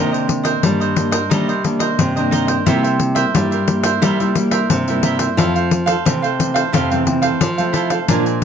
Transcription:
Already playing: nylon-string guitar C3 D#3 A#3 D4, cavaquinho D#4 A#4 C5 D#5
0.12 cavaquinho A#4 C5 D#5, pandeiro
0.27 muted cavaquinho stroke, pandeiro
0.43 cavaquinho A#4 C5 D#5, pandeiro
0.63 nylon-string guitar G2 D#3 G3 A#3 D4, pandeiro
0.80 cavaquinho A#4 C5 D#5, pandeiro
0.96 nylon-string guitar D#3 A#3 D4, pandeiro
1.11 cavaquinho A#4 C5 D#5, pandeiro
1.30 nylon-string guitar C3 D#3 G3 A#3 D4, cavaquinho D#4 A#4 C5 D#5, pandeiro
1.48 cavaquinho A#4 C5 D#5, pandeiro
1.64 nylon-string guitar D#3 A#3 D4, muted cavaquinho stroke, pandeiro
1.79 cavaquinho A#4 C5 D#5, pandeiro
1.99 nylon-string guitar G2 C3, pandeiro
2.16 nylon-string guitar D#3 A#3 D4, cavaquinho A#4 C5 D#5, pandeiro
2.31 cavaquinho D#4 A#4 C5 D#5, pandeiro
2.47 cavaquinho A#4 C5 D#5, pandeiro
2.66 nylon-string guitar C3 G3 A#3 E4, cavaquinho E4 A#4 C5 E5, pandeiro
2.83 cavaquinho A#4 C5 E5, pandeiro
2.99 muted cavaquinho stroke, pandeiro
3.15 cavaquinho A#4 C5 E5, pandeiro
3.34 nylon-string guitar G2 G3 A#3 E4, pandeiro
3.51 cavaquinho A#4 C5 E5, pandeiro
3.68 nylon-string guitar G3 A#3 E4, pandeiro
3.83 cavaquinho A#4 C5 E5, pandeiro
4.02 nylon-string guitar C3 G3, cavaquinho E4 A#4 C5 E5, pandeiro
4.20 nylon-string guitar G3 A#3 E4, cavaquinho A#4 C5 E5, pandeiro
4.35 nylon-string guitar G3 A#3 E4, muted cavaquinho stroke, pandeiro
4.51 cavaquinho A#4 C5 E5, pandeiro
4.70 nylon-string guitar G2 C3, pandeiro
4.88 nylon-string guitar G3 A#3 E4, cavaquinho A#4 C5 E5, pandeiro
5.03 cavaquinho E4 A#4 C5 E5, pandeiro
5.19 cavaquinho A#4 C5 E5, pandeiro
5.37 nylon-string guitar F2 F3 A3 C4, cavaquinho E4 A4 C5 F5, pandeiro
5.55 cavaquinho A4 C5 F5, pandeiro
5.71 muted cavaquinho stroke, pandeiro
5.86 cavaquinho A4 C5 F5, pandeiro
6.05 nylon-string guitar C3 E3 A3 C4, pandeiro
6.22 cavaquinho A4 C5 F5, pandeiro
6.39 nylon-string guitar E3 A3 C4, pandeiro
6.54 cavaquinho A4 C5 F5, pandeiro
6.72 nylon-string guitar F2 C3, cavaquinho E4 A4 C5 F5, pandeiro
6.90 nylon-string guitar E3 A3 C4, cavaquinho A4 C5 F5, pandeiro
7.05 nylon-string guitar E3 A3 C4, muted cavaquinho stroke, pandeiro
7.22 cavaquinho A4 C5 F5, pandeiro
7.41 nylon-string guitar C3 F3, pandeiro
7.58 nylon-string guitar A3 C4, cavaquinho A4 C5 F5, pandeiro
7.73 cavaquinho E4 A4 C5 F5, pandeiro
7.90 cavaquinho A4 C5 F5, pandeiro
8.08 nylon-string guitar A#2 F3 G#3 D4, cavaquinho D4 A#4 D5 G#5, pandeiro
8.26 cavaquinho A#4 D5 G#5, pandeiro

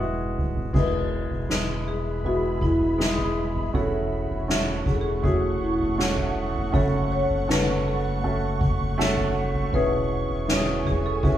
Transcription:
Already playing: sub bass E1, grand piano G#3 G#4
0.00 grand piano B3 E4 F#4
0.37 sub bass D1, mid tom
0.55 floor tom
0.73 sub bass E1, grand piano B2 G#3 B3 E4 G#4, ambient pad G#4 E5 B5, kick, floor tom, crash
0.77 marimba B4
1.30 sub bass E1, floor tom
1.48 sub bass E1, grand piano G#3 B3 E4 B4, snare
1.88 marimba G#4
2.24 grand piano G#3 B3 E4 F#4, marimba F#4, floor tom
2.61 marimba E4, kick
2.80 floor tom
2.98 grand piano G#3 B3 E4 G#4, snare
3.18 floor tom
3.56 floor tom
3.73 sub bass E1, grand piano E3 A3 C#4 E4 F#4, ambient pad A3 F#5 C#6, marimba A4, floor tom
4.30 sub bass E1, floor tom
4.48 grand piano A3 C#4 E4 F#4, snare
4.86 sub bass E1, marimba G#4, kick, floor tom
4.94 marimba A4
5.01 marimba G#4
5.22 grand piano A3 C#4 E4 G#4, marimba F#4, kick, floor tom
5.61 sub bass E1, marimba E4
5.80 floor tom
5.98 grand piano A3 C#4 E4 F#4, snare
6.17 floor tom
6.35 sub bass E1
6.55 floor tom
6.72 sub bass F#1, grand piano C#3 A3 C#4 F#4 A4, marimba A4, kick, floor tom
7.12 marimba C#5
7.30 sub bass F#1, floor tom
7.48 sub bass F#1, grand piano A3 C#4 F#4 A4, marimba B4, snare
7.88 marimba A4
8.23 grand piano A3 C#4 F#4 A4, floor tom
8.61 kick
8.80 floor tom
8.98 grand piano A3 C#4 F#4 A4, snare
9.17 floor tom
9.54 floor tom
9.73 sub bass E1, grand piano B2 B3 C#4 E4 G#4, marimba B4, ambient pad E5 G#5, floor tom
10.29 sub bass E1, floor tom
10.48 grand piano B3 C#4 E4 F#4, snare
10.55 grand piano G#4
10.85 sub bass E1, marimba G#4, kick, floor tom
11.06 marimba A4
11.23 grand piano B3 C#4 E4 F#4, marimba G#4, kick, floor tom

